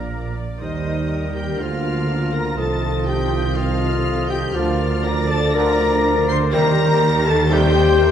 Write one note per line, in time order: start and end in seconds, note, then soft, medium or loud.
0.00 0.34 A#1 medium
0.00 0.34 A#2 medium
0.00 0.35 A#2 medium
0.00 0.37 A#2 medium
0.00 0.34 A#3 medium
0.00 0.34 A#4 medium
0.00 0.36 A#4 medium
0.00 0.11 D5 medium
0.00 0.34 A#5 medium
0.12 0.60 D5 medium
0.60 1.55 D#2 medium
0.60 1.61 D#2 medium
0.60 1.56 D#3 medium
0.60 1.56 G3 medium
0.60 1.62 G3 medium
0.60 1.30 D#4 medium
0.60 1.31 D#4 medium
0.60 1.55 A#4 medium
0.60 1.10 C5 medium
0.60 1.30 D#5 medium
0.60 1.31 D#5 medium
0.60 1.31 D#6 medium
1.10 1.59 A#4 medium
1.34 1.62 G4 medium
1.34 1.60 G4 medium
1.34 1.59 G5 medium
1.34 1.60 G5 medium
1.34 1.60 G6 medium
1.58 2.58 D2 medium
1.58 2.57 D2 medium
1.58 2.58 D3 medium
1.58 2.59 D3 medium
1.58 2.58 F3 medium
1.58 2.59 A#3 medium
1.58 3.57 F4 medium
1.58 2.32 F4 medium
1.58 2.34 F4 medium
1.58 2.56 A#4 medium
1.58 2.33 F5 medium
1.58 2.34 F6 medium
2.32 2.59 A#4 medium
2.32 2.58 A#4 medium
2.32 2.58 A#5 medium
2.32 2.58 A#6 medium
2.57 4.51 C2 medium
2.57 4.51 C3 medium
2.57 4.51 D#3 medium
2.57 4.51 F3 medium
2.57 3.55 F3 medium
2.57 3.07 A4 medium
2.57 3.54 D#5 medium
2.57 3.06 A5 medium
2.57 3.07 A5 medium
2.57 3.07 A6 medium
3.06 3.57 G4 medium
3.06 3.56 G4 medium
3.06 3.56 G5 medium
3.06 3.56 G6 medium
3.55 4.53 F3 medium
3.55 4.30 F4 medium
3.55 4.31 F4 medium
3.55 4.55 A4 medium
3.55 4.56 D#5 medium
3.55 4.29 F5 medium
3.55 4.31 F5 medium
3.55 4.31 F6 loud
4.28 4.56 G4 medium
4.28 4.55 G4 medium
4.28 4.55 G5 medium
4.28 4.38 G5 medium
4.28 4.55 G6 loud
4.54 6.49 D2 medium
4.54 6.54 D2 medium
4.54 4.72 D3 medium
4.54 6.49 D3 medium
4.54 5.04 F3 medium
4.54 4.73 F3 medium
4.54 5.05 F4 medium
4.54 5.04 F4 medium
4.54 5.04 A#4 medium
4.54 5.05 D5 medium
4.54 5.04 F5 medium
4.54 5.04 F6 loud
5.04 5.53 F3 medium
5.04 5.29 A#4 loud
5.04 5.30 A#4 loud
5.04 6.02 D5 loud
5.04 5.54 D5 medium
5.04 5.30 A#5 loud
5.04 5.30 A#5 medium
5.04 5.29 A#6 loud
5.27 5.54 A4 loud
5.27 5.54 A4 medium
5.27 5.54 A5 medium
5.27 5.54 A5 loud
5.27 5.53 A6 loud
5.53 5.72 D3 medium
5.53 6.37 F3 medium
5.53 5.72 F3 medium
5.53 6.27 A#4 loud
5.53 6.28 A#4 loud
5.53 6.55 D5 loud
5.53 6.27 A#5 loud
5.53 6.28 A#6 loud
6.03 6.53 A#4 medium
6.28 6.52 C5 loud
6.28 6.54 C5 loud
6.28 6.36 C6 loud
6.28 6.54 C6 loud
6.28 6.36 C7 loud
6.52 8.12 D#2 medium
6.52 6.71 C3 loud
6.52 8.12 D#3 loud
6.52 6.71 G3 loud
6.52 7.22 G3 medium
6.52 7.52 G4 loud
6.52 7.26 A#4 loud
6.52 7.12 A#4 loud
6.52 7.24 C5 medium
6.52 7.26 A#5 loud
6.52 7.27 A#5 loud
6.52 7.26 A#6 loud
7.26 7.52 A4 loud
7.26 7.53 A4 loud
7.26 7.52 A5 loud
7.26 7.52 A6 loud
7.51 7.69 C3 loud
7.51 7.68 G3 loud
7.51 8.03 G3 medium
7.51 8.12 G4 loud
7.51 8.12 C5 loud
7.51 8.02 C5 loud
7.51 8.12 G5 loud
7.51 8.04 G5 loud
7.51 8.12 G6 loud
8.01 8.12 A3 medium
8.01 8.12 A#4 loud